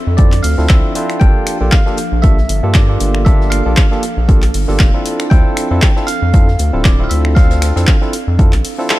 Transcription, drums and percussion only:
0.18 kick, closed hi-hat
0.32 clap, open hi-hat
0.43 open hi-hat
0.58 snare
0.69 kick, snare, clap, closed hi-hat
0.95 closed hi-hat, open hi-hat
1.10 finger snap, closed hi-hat
1.21 kick, closed hi-hat
1.47 finger snap, closed hi-hat, open hi-hat
1.72 kick, snare, clap, closed hi-hat
1.86 snare
1.97 closed hi-hat, open hi-hat
2.23 kick, closed hi-hat
2.38 snare
2.49 closed hi-hat, open hi-hat
2.74 kick, snare, clap, closed hi-hat
3.00 closed hi-hat, open hi-hat
3.15 finger snap
3.26 kick, closed hi-hat
3.41 snare
3.52 finger snap, closed hi-hat, open hi-hat
3.77 kick, snare, clap, closed hi-hat
3.91 snare
4.03 closed hi-hat, open hi-hat
4.29 kick, closed hi-hat
4.42 clap, open hi-hat
4.54 open hi-hat
4.68 snare
4.79 kick, snare, clap, closed hi-hat
5.06 closed hi-hat, open hi-hat
5.19 finger snap, closed hi-hat
5.31 kick, closed hi-hat
5.57 finger snap, closed hi-hat, open hi-hat
5.82 kick, snare, clap, closed hi-hat
5.96 snare
6.08 closed hi-hat, open hi-hat
6.33 kick, closed hi-hat
6.48 snare
6.59 closed hi-hat, open hi-hat
6.85 kick, snare, clap, closed hi-hat
7.11 open hi-hat
7.25 finger snap
7.36 kick, snare, closed hi-hat
7.50 snare, closed hi-hat
7.62 finger snap, snare, closed hi-hat, open hi-hat
7.76 snare, closed hi-hat
7.87 kick, snare, clap, closed hi-hat
8.01 snare
8.13 closed hi-hat, open hi-hat
8.39 kick, closed hi-hat
8.53 clap, open hi-hat
8.65 open hi-hat
8.79 snare
8.90 snare, clap, closed hi-hat

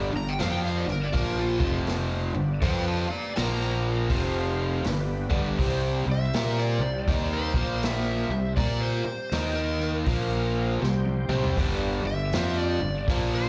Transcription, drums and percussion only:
0.40 snare, open hi-hat
0.65 snare
0.87 snare
1.14 kick, open hi-hat
1.60 kick
1.87 snare, open hi-hat
2.62 kick, open hi-hat
3.36 snare, open hi-hat
3.60 snare
4.10 kick, open hi-hat
4.84 snare, open hi-hat
5.31 kick
5.59 kick, open hi-hat
6.33 snare, open hi-hat
6.58 snare
7.08 kick, open hi-hat
7.54 kick
7.83 snare, open hi-hat
8.57 kick, open hi-hat
9.32 snare, open hi-hat
9.80 snare
10.06 kick, open hi-hat
10.83 snare
11.05 high tom
11.29 mid tom
11.44 floor tom
11.57 kick, open hi-hat
12.33 snare, open hi-hat
13.08 kick, open hi-hat

